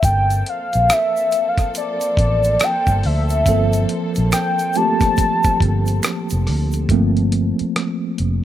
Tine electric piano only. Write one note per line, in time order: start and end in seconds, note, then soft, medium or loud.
3.47 3.80 F3 medium
3.47 3.80 A#3 medium
3.47 3.80 C4 medium
3.47 3.81 A4 medium
4.76 5.97 F3 medium
4.76 4.83 A3 soft
4.76 5.98 C4 medium
4.76 5.98 G4 medium
4.83 6.01 A#3 medium
6.90 8.44 F3 medium
6.90 8.44 A3 soft
6.90 8.44 A#3 soft
6.90 8.44 C4 medium